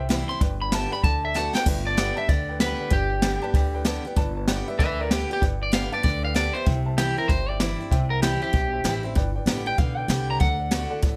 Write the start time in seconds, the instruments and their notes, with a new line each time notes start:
Already playing: upright bass C2, steel-string acoustic guitar C3
0.08 steel-string acoustic guitar E3 G3 C4 E4, upright piano E5 G5, snare, open hi-hat
0.29 steel-string acoustic guitar C4 E4, upright piano C5 E5 G5, clean electric guitar C6
0.40 upright bass G1, steel-string acoustic guitar G2, upright piano B4 D5 G5, kick, open hi-hat
0.61 upright piano B4 D5 G5, clean electric guitar B5
0.72 steel-string acoustic guitar D3 G3 B3 G4, upright piano D5 E5, clean electric guitar A5, snare
0.91 steel-string acoustic guitar B3 G4, upright piano B4 D5 G5, clean electric guitar B5
1.04 upright bass D2, steel-string acoustic guitar D3, upright piano A4, clean electric guitar A5, kick, open hi-hat
1.24 upright piano A4 D5 A5, clean electric guitar E5
1.34 steel-string acoustic guitar D3 A3 D4 F#4, upright piano D5 F#5, clean electric guitar A5, snare
1.54 upright piano A4 D5 A5, clean electric guitar G5, snare
1.66 upright bass G1, steel-string acoustic guitar G2, upright piano B4 D5 G5, kick, crash
1.86 upright piano B4 D5 A5, clean electric guitar D5
1.96 steel-string acoustic guitar D3 G3 B3 G4, upright piano B4 D5 G5, snare, open hi-hat
2.15 steel-string acoustic guitar B3 G4, upright piano B4 D5 A5, clean electric guitar E5
2.28 upright bass D2, steel-string acoustic guitar D3, upright piano B4 D5 G5, clean electric guitar D5, kick, open hi-hat
2.49 upright piano B4 D5 G5
2.59 steel-string acoustic guitar D3 G3 B3 G4, upright piano B4 D5 G5, clean electric guitar B4, snare
2.79 upright piano B4 D5 G5
2.90 upright bass G1, steel-string acoustic guitar G2, clean electric guitar G4, upright piano B4 D5 G5, kick, open hi-hat
3.10 upright piano D5 G5
3.21 steel-string acoustic guitar D3 G3 B3 G4, upright piano B4 D5 G5, snare
3.42 steel-string acoustic guitar B3 G4, upright piano B4 D5 A5
3.53 upright bass D2, steel-string acoustic guitar D3, upright piano B4 D5 G5, kick, open hi-hat
3.74 upright piano B4 D5 G5
3.85 steel-string acoustic guitar D3 G3 B3 G4, upright piano B4 D5 A5, snare
4.05 steel-string acoustic guitar B3 G4, upright piano B4 D5 G5
4.16 upright bass G1, steel-string acoustic guitar G2, upright piano B4 D5 A5, kick, open hi-hat
4.36 upright piano B4 D5 A5
4.47 steel-string acoustic guitar D3 G3 B3 G4, upright piano B4 D5 G5, snare, open hi-hat
4.67 steel-string acoustic guitar B3 G4, upright piano B4 D5 E5
4.78 upright bass D2, steel-string acoustic guitar D3, clean electric guitar B4 E5, upright piano B4 D5 G5, kick, open hi-hat
4.98 clean electric guitar A#4 D5, upright piano B4 D5 G5
5.10 steel-string acoustic guitar D3 G3 B3 G4, clean electric guitar G4 B4, snare
5.30 steel-string acoustic guitar B3 G4, clean electric guitar G4, upright piano B4 D5 G5
5.41 upright bass G1, steel-string acoustic guitar G2, upright piano B4 D5 G5, kick, open hi-hat
5.60 upright piano D5, clean electric guitar D5
5.72 steel-string acoustic guitar D3 G3 B3 G4, upright piano B4 D5 G5, clean electric guitar F5, snare, open hi-hat
5.92 steel-string acoustic guitar B3 G4, upright piano B4 D5 A5, clean electric guitar D5
6.03 upright bass D2, steel-string acoustic guitar D3, clean electric guitar D5, upright piano G5, kick, open hi-hat
6.23 upright piano B4 D5 G5, clean electric guitar F5
6.34 steel-string acoustic guitar D3 G3 B3 G4, upright piano B4 D5 A5, clean electric guitar D5, snare
6.53 steel-string acoustic guitar B3 G4, upright piano B4 D5 E5, clean electric guitar C5
6.65 upright bass C2, steel-string acoustic guitar C3, upright piano C5 E5 G5, kick, open hi-hat
6.86 upright piano C5 E5 A5
6.97 steel-string acoustic guitar E3 G3 C4 E4, clean electric guitar G4, upright piano C5 A5, snare
7.17 steel-string acoustic guitar C4 E4, clean electric guitar A#4, upright piano C5 E5 G5
7.28 upright bass G1, steel-string acoustic guitar G2, clean electric guitar C5, kick, open hi-hat
7.49 upright piano C5 E5 G5, clean electric guitar D5
7.60 steel-string acoustic guitar E3 G3 C4 E4, upright piano C5, snare, open hi-hat
7.80 steel-string acoustic guitar C4 E4, upright piano C5 E5 G5
7.91 upright bass C2, steel-string acoustic guitar C3, upright piano C5 E5 G5, kick, open hi-hat
8.10 clean electric guitar A#4, upright piano C5 E5 F#5
8.22 steel-string acoustic guitar E3 G3 C4 E4, clean electric guitar G4, upright piano E5, snare, open hi-hat
8.42 steel-string acoustic guitar C4 E4, clean electric guitar G4, upright piano C5 E5 G5
8.53 upright bass B1, steel-string acoustic guitar G2, kick, open hi-hat
8.73 upright piano C5 E5 G5
8.84 upright bass A1, steel-string acoustic guitar E3 G3 C4 E4, upright piano C5 E5 G5, snare, open hi-hat
9.03 steel-string acoustic guitar C4 E4, upright piano C5 E5 G5
9.15 upright bass G1, steel-string acoustic guitar G2, upright piano B4 D5 G5, kick, open hi-hat
9.36 upright piano B4 D5 G5
9.46 upright bass A1, steel-string acoustic guitar D3 G3 B3 G4, upright piano B4 D5 G5, snare, open hi-hat
9.66 steel-string acoustic guitar B3 G4, upright piano B4 D5 G5, clean electric guitar G5
9.77 upright bass B1, steel-string acoustic guitar D3, upright piano B4 D5 F#5, clean electric guitar F5, kick, open hi-hat
9.97 upright piano B4 D5 G5, clean electric guitar G5
10.08 upright bass C2, steel-string acoustic guitar D3 G3 B3 G4, snare, open hi-hat
10.29 upright piano B4 D5 G5, clean electric guitar A#5
10.40 upright bass D2, steel-string acoustic guitar D3, upright piano A4 D5 F#5, clean electric guitar F#5, kick, open hi-hat
10.59 upright piano A4 D5 F#5
10.71 steel-string acoustic guitar D3 A3 D4 F#4, upright piano A4 D5 F#5, snare, open hi-hat
10.90 upright piano A4 D5 F#5
11.02 upright bass A1, steel-string acoustic guitar A2, upright piano A4 D5 F#5, kick, open hi-hat